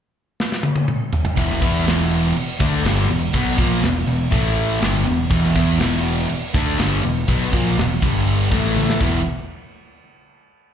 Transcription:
0.40 snare
0.52 snare
0.63 high tom
0.75 high tom
0.88 mid tom
1.13 floor tom
1.25 floor tom
1.36 picked electric bass E1, distorted electric guitar E2 B2 E3, kick, crash
1.50 snare
1.62 picked electric bass E2, distorted electric guitar E3 B3 E4, kick, crash
1.85 picked electric bass E1, distorted electric guitar E2 B2 E3, snare, crash
2.11 crash
2.36 muted distorted electric guitar stroke, crash
2.59 picked electric bass D2, distorted electric guitar D3 A3 D4, kick, crash
2.84 picked electric bass G1, distorted electric guitar G2 D3 G3, snare, crash
3.09 picked electric bass E1, distorted electric guitar E2 B2, crash
3.34 picked electric bass B1, distorted electric guitar B2 F#3 B3, kick, crash
3.58 picked electric bass A#1, distorted electric guitar A#2 F3 A#3, kick, crash
3.82 picked electric bass E1, distorted electric guitar E2 B2, snare, crash
4.06 picked electric bass E1, distorted electric guitar E2 B2, crash
4.31 picked electric bass A1, distorted electric guitar A2 E3 A3, kick, crash
4.57 crash
4.80 picked electric bass G1, distorted electric guitar G2 D3 G3, snare, crash
5.05 picked electric bass E1, distorted electric guitar E2 B2, crash
5.29 picked electric bass E1, distorted electric guitar E2 B2 E3, kick, crash
5.44 snare
5.53 picked electric bass E2, distorted electric guitar E3 B3 E4, kick, crash
5.78 picked electric bass E1, distorted electric guitar E2 B2 E3, snare, crash
6.05 crash
6.29 muted picked electric bass stroke, muted distorted electric guitar stroke, crash
6.54 picked electric bass D2, distorted electric guitar D3 A3 D4, kick, crash
6.78 picked electric bass G1, distorted electric guitar G2 D3 G3, snare, crash
7.03 picked electric bass E1, distorted electric guitar E2 B2, crash
7.27 picked electric bass B1, distorted electric guitar B2 F#3 B3, kick, crash
7.52 picked electric bass A#1, distorted electric guitar A#2 F3 A#3, kick, crash
7.77 picked electric bass E1, distorted electric guitar E2 B2, snare, crash
8.02 picked electric bass G1, distorted electric guitar G2 D3 G3, kick, crash
8.27 crash
8.51 picked electric bass A1, distorted electric guitar A2 E3 A3, kick, crash
8.65 snare
8.77 high tom
8.90 snare
9.00 picked electric bass E1, distorted electric guitar E2 B2 E3 G3 B3 E4, kick, crash

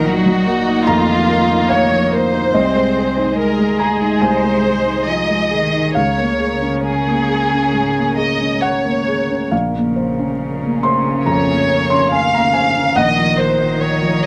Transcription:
Already playing: felt piano A#1 F3 D#4 A#4 F#5, string section A#3 D#4 D#5
0.05 cello F#3, violin section F#4
0.26 felt piano F#3
0.46 cello A#3, felt piano A#4
0.68 felt piano D#4
0.87 felt piano F2 A#5, violin section F4
1.10 felt piano F3
1.30 felt piano A#4
1.50 felt piano D#4
1.70 violin section C#5, felt piano F5
1.91 felt piano F3
2.13 felt piano A#4, violin section C5
2.34 felt piano D#4
2.54 felt piano C2 D#5, string section G#3 G#4 D#5, cello C4
2.75 felt piano G#3
2.97 felt piano G#4
3.17 felt piano D#4
3.38 cello G#3, violin section A#4
3.59 felt piano G#3
3.79 violin section G#4, felt piano G#4 A#5
4.02 felt piano D#4
4.21 felt piano C2 G#5, violin section C5
4.44 felt piano G#3
4.65 felt piano G#4
4.86 felt piano D#4
5.08 cello F3, violin section D#5
5.29 felt piano G#3
5.51 cello D#3, felt piano G#4
5.73 felt piano D#4
5.95 felt piano C#2 F5, cello C#3, string section G#3 A#4 C#5, violin section C#5
6.18 felt piano A#3
6.40 felt piano G#4
6.61 felt piano C#4
6.83 violin section G#4
7.06 felt piano A#3
7.28 felt piano G#4
7.52 felt piano C#4
7.73 felt piano G#2
7.95 felt piano A#3
8.16 felt piano G#4, violin section D#5
8.40 felt piano C#4
8.62 violin section C#5, felt piano F#5
8.84 felt piano A#3
9.08 felt piano G#4
9.30 felt piano C#4
9.51 felt piano A#1 F5, cello C#3, string section F3 C#4 A#4
9.75 felt piano A#3
9.96 felt piano C5
10.19 felt piano C#4
10.63 felt piano A#3
10.83 felt piano C5 C6
11.06 felt piano C#4
11.26 felt piano F2 A#5, violin section C#5
11.48 felt piano A#3
11.70 felt piano C#5
11.90 felt piano C#4 C6
12.12 violin section F5, felt piano G#5
12.33 felt piano A#3 A#5
12.53 felt piano C5 G#5
12.76 felt piano C#4
12.96 felt piano A#1 F#5, cello D#3, string section F3 A#4 D#5, violin section D#5
13.18 felt piano F3
13.38 felt piano A#4, violin section C5
13.60 felt piano D#4
13.81 violin section C#5
14.02 felt piano F3
14.23 violin section D#5

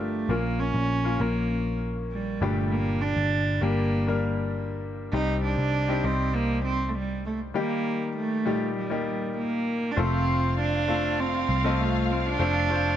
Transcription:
Already playing: picked electric bass G1, grand piano D4 F4 G4 A4 A#4
0.00 cello A3
0.29 picked electric bass A#1, grand piano A#2 A#3 C#4 F4 A#4, cello A#3
0.60 cello C#4
0.74 picked electric bass A#1
1.04 grand piano A#3 C#4 F4 A#4
1.20 picked electric bass A#1, grand piano A#3 C#4 F4 A#4, cello A#3
2.12 cello G3
2.41 picked electric bass G1, grand piano G2 A#2 G3 D4 G4, cello A3
2.72 cello A#3
3.01 cello D4
3.17 picked electric bass G1
3.61 picked electric bass G1, grand piano G3 A#3 D4 G4, cello A#3
4.07 grand piano G3 A#3 D4 A#4
5.13 picked electric bass C2, grand piano C3 G3 C4 D#4 G4, cello D#4
5.44 cello D4
5.58 picked electric bass C2
5.88 grand piano G3 C4 D#4 G4
6.04 picked electric bass C2, grand piano G3 C4 D#4 G4, cello C4
6.35 cello A#3
6.65 cello C4
6.89 cello A3
6.95 cello G3
7.26 cello A3
7.54 grand piano D#3 G3 A#3 D#4 G4, cello A#3
8.17 cello A3
8.46 grand piano A#2 G3 D#4 G4
8.78 cello G3
8.90 grand piano G3 A#3 D#4 G4
9.38 cello A#3
9.91 cello D4
9.96 picked electric bass F1, grand piano A3 C4 F4 A4 C5, cello C4, violin section F4 F5
10.60 cello D4
10.88 grand piano A3 C4 F4 A4 F5
11.20 cello C4
11.49 picked electric bass C2
11.64 grand piano A3 C4 F4 A4 D#5
11.81 cello A3
12.11 cello C4
12.26 cello D4
12.39 picked electric bass F1, grand piano A3 C4 F4 A4 C5
12.70 grand piano A3 C4 F4 A4 C5

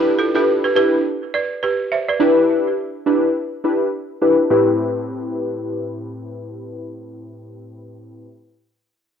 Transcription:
Already playing: synth keys D4 E4 G4 B4
0.19 balafon F4 A4
0.34 synth keys D4 E4 G4 B4, balafon F4 A4
0.64 balafon G4 B4
0.75 synth keys D4 E4 G4 B4, balafon G4 B4
1.34 balafon B4 D5
1.63 balafon G4 B4
1.92 balafon C5 E5
2.08 balafon B4 D5
2.20 synth keys D4 E4 G4 B4
3.06 synth keys D4 E4 G4 B4
3.64 synth keys D4 E4 G4 B4
4.21 synth keys D4 E4 G4 B4
4.50 synth keys A2 C4 E4 G4 B4

